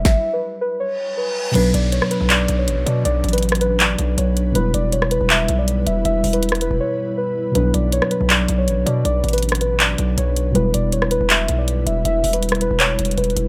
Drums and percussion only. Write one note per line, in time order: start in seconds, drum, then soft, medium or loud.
0.05 kick loud
0.05 snare medium
1.55 closed hi-hat medium
1.55 crash loud
1.74 closed hi-hat medium
1.92 closed hi-hat medium
2.02 cross-stick loud
2.11 closed hi-hat medium
2.30 clap loud
2.30 closed hi-hat medium
2.48 closed hi-hat medium
2.68 closed hi-hat medium
2.87 closed hi-hat medium
3.05 closed hi-hat medium
3.24 closed hi-hat soft
3.29 closed hi-hat medium
3.33 closed hi-hat medium
3.38 closed hi-hat medium
3.43 closed hi-hat medium
3.49 cross-stick loud
3.49 closed hi-hat medium
3.55 closed hi-hat medium
3.61 closed hi-hat medium
3.80 clap loud
3.80 closed hi-hat medium
3.99 closed hi-hat medium
4.18 closed hi-hat medium
4.37 closed hi-hat medium
4.55 closed hi-hat medium
4.74 closed hi-hat medium
4.92 closed hi-hat medium
5.02 cross-stick loud
5.11 closed hi-hat medium
5.30 clap loud
5.30 closed hi-hat medium
5.48 closed hi-hat medium
5.68 closed hi-hat medium
5.87 closed hi-hat medium
6.05 closed hi-hat medium
6.24 closed hi-hat soft
6.24 open hi-hat medium
6.33 closed hi-hat medium
6.43 closed hi-hat medium
6.49 cross-stick loud
6.49 closed hi-hat medium
6.55 closed hi-hat soft
6.61 closed hi-hat medium
7.55 closed hi-hat medium
7.74 closed hi-hat medium
7.92 closed hi-hat medium
8.02 cross-stick loud
8.11 closed hi-hat medium
8.30 clap loud
8.30 closed hi-hat medium
8.48 closed hi-hat medium
8.68 closed hi-hat medium
8.87 closed hi-hat medium
9.05 closed hi-hat medium
9.24 closed hi-hat soft
9.29 closed hi-hat medium
9.33 closed hi-hat medium
9.38 closed hi-hat medium
9.43 closed hi-hat medium
9.49 cross-stick loud
9.49 closed hi-hat medium
9.55 closed hi-hat medium
9.61 closed hi-hat medium
9.80 clap loud
9.80 closed hi-hat medium
9.98 closed hi-hat medium
10.18 closed hi-hat medium
10.36 closed hi-hat medium
10.55 closed hi-hat medium
10.74 closed hi-hat medium
10.92 closed hi-hat medium
11.02 cross-stick loud
11.11 closed hi-hat medium
11.30 clap loud
11.30 closed hi-hat medium
11.48 closed hi-hat medium
11.68 closed hi-hat medium
11.87 closed hi-hat medium
12.05 closed hi-hat medium
12.24 closed hi-hat soft
12.24 open hi-hat medium
12.33 closed hi-hat medium
12.43 closed hi-hat medium
12.49 cross-stick loud
12.49 closed hi-hat medium
12.55 closed hi-hat soft
12.61 closed hi-hat medium
12.80 clap loud
12.80 closed hi-hat medium
12.99 closed hi-hat medium
13.05 closed hi-hat medium
13.11 closed hi-hat medium
13.18 closed hi-hat medium
13.24 closed hi-hat medium
13.30 closed hi-hat soft
13.37 closed hi-hat medium